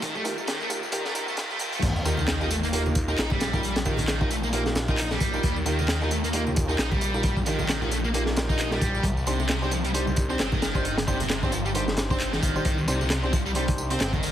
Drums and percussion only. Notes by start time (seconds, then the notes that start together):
0.02 kick, closed hi-hat, tambourine
0.15 kick, tambourine
0.25 closed hi-hat, tambourine
0.38 tambourine
0.47 snare, closed hi-hat, tambourine
0.60 tambourine
0.70 closed hi-hat, tambourine
0.83 tambourine
0.92 closed hi-hat, tambourine
1.05 snare, tambourine
1.15 closed hi-hat, tambourine
1.28 tambourine
1.37 snare, closed hi-hat, tambourine
1.51 tambourine
1.59 closed hi-hat, tambourine
1.72 closed hi-hat, tambourine
1.82 kick, closed hi-hat, crash, tambourine
1.96 tambourine
2.05 closed hi-hat, tambourine
2.17 tambourine, high bongo, high conga
2.28 snare, clap, closed hi-hat, tambourine
2.41 tambourine
2.51 closed hi-hat, tambourine
2.63 closed hi-hat, tambourine
2.73 closed hi-hat, tambourine
2.86 tambourine, high bongo, high conga
2.95 kick, closed hi-hat, tambourine
3.08 tambourine, high bongo
3.18 snare, clap, closed hi-hat, tambourine
3.30 kick, tambourine, high conga, low conga
3.40 snare, closed hi-hat, tambourine
3.53 kick, tambourine, high bongo
3.63 closed hi-hat, tambourine
3.76 snare, closed hi-hat, tambourine
3.85 kick, tambourine
3.97 closed hi-hat, tambourine, high bongo, high conga, low conga
4.08 snare, clap, closed hi-hat, tambourine
4.21 kick, tambourine, low conga
4.31 closed hi-hat, tambourine
4.43 tambourine
4.53 closed hi-hat, tambourine
4.66 snare, tambourine
4.75 snare, closed hi-hat, tambourine
4.88 kick, tambourine, high bongo
4.98 clap, closed hi-hat, tambourine
5.11 snare, tambourine, high bongo
5.20 kick, closed hi-hat, tambourine
5.34 tambourine
5.43 kick, closed hi-hat, tambourine
5.56 tambourine
5.66 closed hi-hat, tambourine
5.79 tambourine, high bongo, high conga
5.88 snare, clap, closed hi-hat, tambourine
6.01 tambourine
6.11 closed hi-hat, tambourine
6.24 closed hi-hat, tambourine
6.33 closed hi-hat, tambourine
6.47 tambourine, high bongo, high conga
6.56 kick, closed hi-hat, tambourine
6.68 tambourine, high bongo
6.79 snare, clap, closed hi-hat, tambourine
6.91 kick, tambourine, high conga, low conga
7.01 closed hi-hat, tambourine
7.14 tambourine, high bongo
7.23 kick, closed hi-hat, tambourine
7.36 kick, tambourine
7.46 closed hi-hat, tambourine
7.59 tambourine, high bongo, high conga, low conga
7.69 snare, clap, closed hi-hat, tambourine
7.82 tambourine, low conga
7.91 closed hi-hat, tambourine
8.05 tambourine
8.14 closed hi-hat, tambourine
8.26 snare, tambourine
8.36 snare, closed hi-hat, tambourine
8.49 kick, tambourine, high bongo
8.58 clap, closed hi-hat, tambourine
8.71 snare, tambourine, high bongo
8.81 kick, closed hi-hat, tambourine
8.95 tambourine
9.03 kick, closed hi-hat, tambourine
9.17 tambourine
9.27 closed hi-hat, tambourine
9.39 tambourine, high bongo, high conga
9.48 snare, clap, closed hi-hat, tambourine
9.62 tambourine
9.71 closed hi-hat, tambourine
9.84 closed hi-hat, tambourine
9.94 closed hi-hat, tambourine
10.07 tambourine, high bongo, high conga
10.16 kick, closed hi-hat, tambourine
10.30 tambourine, high bongo
10.39 snare, clap, closed hi-hat, tambourine
10.52 kick, tambourine, high conga, low conga
10.62 snare, closed hi-hat, tambourine
10.75 kick, tambourine, high bongo
10.85 closed hi-hat, tambourine
10.98 snare, closed hi-hat, tambourine
11.07 kick, tambourine
11.20 closed hi-hat, tambourine, high bongo, high conga, low conga
11.29 snare, clap, closed hi-hat, tambourine
11.43 kick, tambourine, low conga
11.52 closed hi-hat, tambourine
11.66 tambourine
11.75 closed hi-hat, tambourine
11.88 snare, tambourine
11.97 snare, closed hi-hat, tambourine
12.10 kick, tambourine, high bongo
12.20 clap, closed hi-hat, tambourine
12.33 snare, tambourine, high bongo
12.43 kick, closed hi-hat, tambourine
12.56 tambourine
12.65 kick, closed hi-hat, tambourine
12.78 tambourine
12.88 closed hi-hat, tambourine
13.01 tambourine, high bongo, high conga
13.10 snare, clap, closed hi-hat, tambourine
13.23 tambourine
13.33 kick, closed hi-hat, tambourine
13.46 tambourine
13.55 closed hi-hat, tambourine
13.68 kick, closed hi-hat, tambourine, high bongo, high conga
13.78 tambourine
13.90 closed hi-hat, tambourine, high bongo
14.00 snare, clap, closed hi-hat, tambourine
14.13 kick, tambourine, high conga, low conga
14.23 closed hi-hat, tambourine